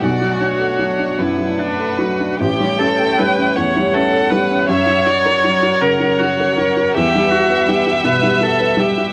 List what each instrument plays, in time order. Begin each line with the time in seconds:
Already playing: string section F#5
0.02 felt piano B1, string section A3 D4, viola F#4, violin D5
0.21 felt piano F#3
0.40 felt piano D4, violin C#5
0.59 felt piano A4
0.79 felt piano F#3
0.99 felt piano D4
1.17 felt piano F#2, viola E4, violin B4
1.38 felt piano F#3
1.58 felt piano D4, viola D4
1.79 felt piano A4
1.98 felt piano F#3, viola F#4
2.20 felt piano D4
2.39 felt piano A1, string section E4 C#5, viola G4, violin G5
2.60 felt piano G3
2.79 felt piano C#4, viola A4
2.99 felt piano A4
3.18 felt piano G3, viola B4
3.38 felt piano C#4
3.55 felt piano E2, viola C#5, violin F#5
3.77 felt piano G3
3.94 felt piano C#4, viola A4
4.13 felt piano A4
4.30 felt piano G3, viola B4
4.51 felt piano C#4
4.67 felt piano F#2, string section F#3 A#4 F#5, viola C#5, violin E5
4.86 felt piano F#3
5.06 felt piano F#4, violin D5
5.26 felt piano A#4
5.44 felt piano F#3
5.62 felt piano F#4
5.81 felt piano C#3, viola A#4, violin C#5
6.00 felt piano F#3
6.19 viola F#4, felt piano F#4
6.40 felt piano A#4
6.55 felt piano F#3, viola A#4
6.77 felt piano F#4
6.93 felt piano E2, string section G3 B4, viola G4, violin E5
7.15 felt piano G3
7.31 viola F#4, felt piano F#4
7.50 felt piano B4
7.68 felt piano G3, viola G4
7.87 felt piano F#4
8.04 felt piano B2, viola B4
8.23 felt piano G3
8.41 felt piano F#4, viola A4
8.60 felt piano B4
8.77 felt piano G3, viola G4
8.97 felt piano F#4